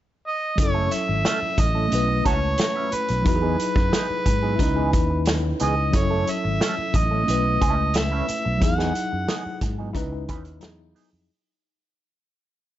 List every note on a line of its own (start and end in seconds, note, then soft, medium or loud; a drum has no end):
0.28 0.57 D#5 medium
0.56 0.88 F#1 medium
0.56 1.88 F#3 medium
0.56 1.89 C#4 medium
0.56 muted clean electric guitar stroke soft
0.56 kick loud
0.56 closed hi-hat medium
0.60 1.90 E4 medium
0.60 1.91 A4 medium
0.60 0.95 C#5 medium
0.74 0.88 A3 medium
0.74 0.88 C#4 medium
0.74 0.88 E4 medium
0.74 0.88 A4 medium
0.91 1.62 E5 loud
0.91 closed hi-hat medium
1.08 1.23 G#1 medium
1.08 muted clean electric guitar stroke soft
1.25 1.38 A3 medium
1.25 1.38 C#4 medium
1.25 1.39 E4 medium
1.25 1.39 A4 medium
1.25 snare medium
1.25 closed hi-hat medium
1.42 muted fingered electric bass stroke soft
1.58 1.88 A1 medium
1.58 2.26 D#5 medium
1.58 muted clean electric guitar stroke soft
1.58 kick medium
1.58 closed hi-hat medium
1.75 1.86 A3 soft
1.75 1.86 C#4 soft
1.75 1.86 E4 soft
1.75 1.85 A4 soft
1.88 3.21 A3 medium
1.88 3.22 C#4 medium
1.88 closed hi-hat medium
1.92 2.21 B1 medium
1.92 3.24 E4 medium
1.92 3.25 B4 medium
2.08 muted clean electric guitar stroke soft
2.25 2.55 C#2 medium
2.25 2.38 F#3 medium
2.25 2.39 C#4 medium
2.25 2.39 E4 medium
2.25 2.33 F#4 medium
2.25 2.39 A4 medium
2.25 2.95 C#5 medium
2.25 kick medium
2.25 closed hi-hat medium
2.42 muted clean electric guitar stroke soft
2.58 muted clean electric guitar stroke soft
2.58 snare loud
2.58 closed hi-hat medium
2.75 2.90 F#3 medium
2.75 2.89 C#4 medium
2.75 2.89 E4 medium
2.75 2.89 B4 medium
2.92 3.26 B4 medium
2.92 muted fingered electric bass stroke soft
2.92 closed hi-hat medium
3.08 3.24 B1 medium
3.08 muted clean electric guitar stroke soft
3.08 closed hi-hat soft
3.22 4.55 F#3 medium
3.22 4.56 D#4 medium
3.22 muted clean electric guitar stroke soft
3.22 kick medium
3.22 closed hi-hat medium
3.26 3.55 E2 medium
3.26 4.54 E4 medium
3.26 3.34 F#4 medium
3.26 5.24 B4 medium
3.36 4.62 G#4 medium
3.42 3.56 F#3 medium
3.42 3.56 B3 medium
3.42 3.56 D#4 medium
3.42 3.56 G#4 medium
3.60 closed hi-hat medium
3.75 3.91 F#2 medium
3.75 muted clean electric guitar stroke soft
3.75 kick medium
3.92 4.06 F#3 medium
3.92 4.06 B3 medium
3.92 4.06 D#4 medium
3.92 4.06 G#4 medium
3.92 snare loud
3.92 closed hi-hat medium
4.10 muted fingered electric bass stroke soft
4.26 4.56 G#2 medium
4.26 muted clean electric guitar stroke soft
4.26 kick medium
4.26 closed hi-hat medium
4.42 4.54 F#3 soft
4.42 4.54 B3 soft
4.42 4.54 D#4 medium
4.42 4.53 G#4 medium
4.56 5.90 C#4 medium
4.56 5.89 E4 medium
4.56 muted clean electric guitar stroke soft
4.56 kick medium
4.60 4.94 C#2 medium
4.60 5.91 D#4 medium
4.60 5.93 B4 medium
4.60 closed hi-hat medium
4.76 4.90 E3 medium
4.76 4.90 B3 medium
4.76 4.90 D#4 medium
4.76 4.90 G#4 medium
4.93 5.52 D#2 medium
4.93 kick medium
4.93 closed hi-hat medium
5.10 muted clean electric guitar stroke soft
5.26 muted clean electric guitar stroke soft
5.26 snare medium
5.26 closed hi-hat medium
5.43 muted clean electric guitar stroke soft
5.60 5.90 C#2 medium
5.60 5.73 E3 medium
5.60 5.74 B3 medium
5.60 5.74 D#4 medium
5.60 5.74 G#4 medium
5.60 5.99 D#5 medium
5.60 closed hi-hat medium
5.90 6.23 F#1 medium
5.90 7.23 F#3 medium
5.90 7.24 C#4 medium
5.90 muted clean electric guitar stroke soft
5.90 kick medium
5.90 closed hi-hat medium
5.95 7.26 E4 medium
5.95 7.26 A4 medium
5.95 6.32 C#5 medium
6.10 6.24 A3 medium
6.10 6.24 C#4 medium
6.10 6.24 E4 medium
6.10 6.24 A4 medium
6.27 6.98 E5 medium
6.27 closed hi-hat medium
6.44 6.59 G#1 medium
6.44 muted clean electric guitar stroke soft
6.60 6.74 A3 medium
6.60 6.74 C#4 medium
6.60 6.74 E4 medium
6.60 6.75 A4 medium
6.60 snare loud
6.60 closed hi-hat medium
6.79 muted fingered electric bass stroke soft
6.94 7.24 A1 medium
6.94 7.98 D#5 medium
6.94 muted clean electric guitar stroke soft
6.94 kick medium
6.94 closed hi-hat medium
7.11 7.22 A3 soft
7.11 7.22 C#4 soft
7.11 7.22 E4 soft
7.11 7.21 A4 soft
7.24 8.57 A3 medium
7.24 8.58 C#4 medium
7.28 7.57 B1 medium
7.28 8.59 E4 medium
7.28 8.60 B4 medium
7.28 closed hi-hat medium
7.45 muted clean electric guitar stroke soft
7.61 8.20 C#2 medium
7.61 7.81 A3 medium
7.61 7.77 C#4 medium
7.61 7.77 E4 medium
7.61 7.76 A4 medium
7.61 kick medium
7.61 closed hi-hat medium
7.77 muted clean electric guitar stroke soft
7.94 8.63 E5 medium
7.94 muted clean electric guitar stroke soft
7.94 snare loud
7.94 closed hi-hat medium
8.11 8.25 A3 medium
8.11 8.25 C#4 medium
8.11 8.25 E4 medium
8.11 8.25 B4 medium
8.28 muted clean electric guitar stroke soft
8.28 muted fingered electric bass stroke soft
8.28 closed hi-hat medium
8.45 8.60 B1 medium
8.45 muted clean electric guitar stroke soft
8.58 9.91 F#3 medium
8.58 9.92 D#4 medium
8.58 muted clean electric guitar stroke soft
8.58 kick loud
8.58 closed hi-hat medium
8.62 8.91 E2 medium
8.62 9.92 E4 medium
8.62 9.94 G#4 medium
8.62 9.59 F#5 medium
8.78 8.92 F#3 medium
8.78 8.92 B3 medium
8.78 8.92 D#4 medium
8.78 8.92 G#4 medium
8.78 snare soft
8.95 closed hi-hat medium
9.12 9.27 F#2 medium
9.12 muted clean electric guitar stroke soft
9.28 9.42 F#3 medium
9.28 9.42 B3 medium
9.28 9.42 D#4 medium
9.28 9.42 G#4 medium
9.28 snare loud
9.28 closed hi-hat medium
9.46 muted fingered electric bass stroke soft
9.61 9.91 G#2 medium
9.61 muted clean electric guitar stroke soft
9.61 kick medium
9.61 closed hi-hat medium
9.79 9.90 F#3 soft
9.79 9.90 B3 soft
9.79 9.89 D#4 soft
9.79 9.89 G#4 soft
9.93 10.29 C#2 medium
9.93 10.62 C#4 medium
9.93 10.60 D#4 medium
9.93 10.61 E4 medium
9.93 10.63 B4 medium
9.93 kick medium
9.93 closed hi-hat medium
10.12 muted clean electric guitar stroke soft
10.29 10.58 D#2 medium
10.29 10.42 E3 medium
10.29 10.42 B3 medium
10.29 10.42 D#4 medium
10.29 10.43 B4 medium
10.29 kick medium
10.29 closed hi-hat medium
10.45 closed hi-hat soft
10.60 10.92 E2 medium
10.60 11.28 F#3 medium
10.60 11.28 D#4 medium
10.60 11.29 E4 medium
10.60 11.30 G#4 medium
10.60 muted clean electric guitar stroke soft
10.60 snare loud
10.60 closed hi-hat medium
10.79 muted clean electric guitar stroke soft
10.95 11.09 F#3 medium
10.95 11.09 B3 medium
10.95 11.09 D#4 medium
10.95 11.10 G#4 medium
10.95 open hi-hat medium
11.13 11.27 F2 medium